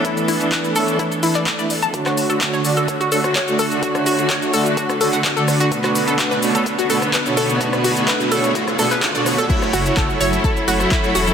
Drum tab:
CC |----------------|----------------|----------------|----------------|
HH |xxoxxxoxxxoxxxox|xxoxx-oxxxoxxxox|xxoxxxoxxxoxxxox|xxoxx-oxxxoxxxox|
SH |xxxxxxxxxxxxxxxx|xxxxxxxxxxxxxxxx|xxxxxxxxxxxxxxxx|xxxxxxxxxxxxxxxx|
CP |----x------xx---|-x--x-------x---|----x------xx---|-x--x-------x---|
SD |----------------|-r---------r----|-r-------r----r-|-r---------r----|
BD |o---o---o---o---|o---o---o---o---|o---o---o---o---|o---o---o---o---|

CC |----------------|x---------------|
HH |xxoxxxoxxxoxxxox|xxoxx-oxxxoxxxox|
SH |xxxxxxxxxxxxxxxx|xxxxxxxxxxxxxxxx|
CP |----x------xx---|-x--x-------x---|
SD |-r-------r----r-|-r---------r----|
BD |o---o---o---o---|o---o---o---o---|